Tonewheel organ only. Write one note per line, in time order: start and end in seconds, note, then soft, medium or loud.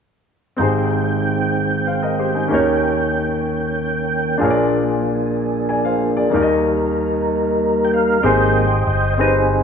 0.58 4.38 D#3 soft
0.58 2.48 G#3 soft
0.58 2.48 C4 soft
0.58 4.37 G5 soft
2.49 8.18 A#3 soft
2.49 4.39 C#4 soft
4.40 6.30 F3 soft
4.40 6.30 D4 soft
4.40 6.30 G#4 medium
6.31 8.21 G3 soft
6.31 8.21 D#4 soft
6.31 8.21 A#4 medium
7.85 7.92 G5 medium
7.94 8.25 F5 medium
8.23 8.66 G#3 soft
8.23 8.65 A#3 soft
8.23 8.66 C4 soft
8.23 9.14 C5 medium
8.23 8.84 D#5 medium
8.23 9.14 G5 medium
8.87 9.20 D#5 medium
9.20 9.63 C4 medium
9.20 9.63 D#4 medium
9.20 9.63 G#4 medium